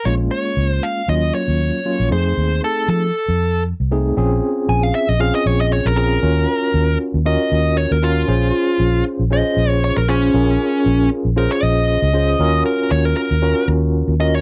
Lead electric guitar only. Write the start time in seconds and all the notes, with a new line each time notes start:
0.05 C#5
0.31 C#5
0.70 C5
0.83 F5
1.09 D#5
1.35 C#5
2.12 C5
2.64 A4
2.90 A4
4.69 G#5
4.83 F5
4.95 E5
5.09 D#5
5.20 F5
5.35 D#5
5.47 C#5
5.61 D#5
5.73 C#5
5.86 A#4
5.97 A#4
7.26 D#5
7.77 C#5
7.92 A#4
8.04 F4
9.33 D#5
9.69 C#5
9.84 C#5
9.98 A#4
10.09 C#4
11.38 A#4
11.51 C#5
11.63 D#5
12.66 A#4
12.92 C#5
13.05 A#4
13.17 A#4
14.20 D#5
14.35 C#5